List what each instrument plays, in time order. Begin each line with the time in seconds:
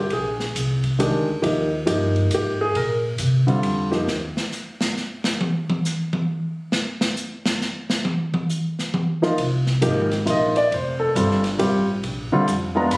Already playing: grand piano G4
0.10 upright bass A#1, grand piano G#4, kick, ride
0.40 snare
0.55 upright bass C2, kick, hi-hat pedal, ride
0.84 kick, ride
0.99 upright bass D2, grand piano D#3 G#3 D4 G4, hi-hat pedal, ride
1.42 upright bass D#2, grand piano F3 A#3 D#4 G4, kick, ride
1.86 upright bass G2, grand piano F3 A#3 D#4 G4, kick, hi-hat pedal, ride
2.16 kick, ride
2.31 upright bass G#2, grand piano G4, hi-hat pedal, ride
2.61 grand piano G#4
2.75 upright bass A#2, grand piano A#4, kick, ride
3.18 upright bass C3, kick, hi-hat pedal, ride
3.47 grand piano D3 G3 C4 F4, muted upright bass stroke, ride
3.63 upright bass F2, kick, ride
3.91 grand piano F3 A#3 D#4 G4, snare
4.07 upright bass D#2, snare
4.37 snare
4.52 snare, hi-hat pedal
4.81 snare
4.97 snare
5.24 snare
5.41 mid tom
5.70 mid tom
5.85 snare, hi-hat pedal
6.13 mid tom
6.72 snare
7.01 snare
7.17 hi-hat pedal
7.46 snare
7.61 snare
7.90 snare
8.05 mid tom
8.34 mid tom
8.49 hi-hat pedal
8.79 snare
8.94 mid tom
9.22 grand piano F3 A#3 D#4 F4, snare
9.38 upright bass C2, kick, ride
9.67 snare
9.81 upright bass G#1, grand piano F3 A#3 D#4 G4, kick, hi-hat pedal, ride
10.11 snare, ride
10.26 upright bass A#1, grand piano F3 A#3 D#4 F4, kick, hi-hat pedal, ride
10.30 grand piano D#5
10.56 grand piano D5, ride
10.71 upright bass F1, grand piano C5, kick, ride
11.00 grand piano A4
11.15 upright bass G1, grand piano G3 C4 F4 A4, kick, hi-hat pedal, ride
11.31 snare
11.44 snare, ride
11.58 upright bass A1, grand piano G3 C4 F4 G4, kick, ride
12.04 upright bass A#1, kick, ride
12.31 grand piano D3 G3 C4 F4, muted upright bass stroke
12.48 upright bass F2, kick, hi-hat pedal, ride
12.75 grand piano G#3 B3 D4 F4 A#5
12.91 upright bass G2, grand piano B5, kick, hi-hat pedal, ride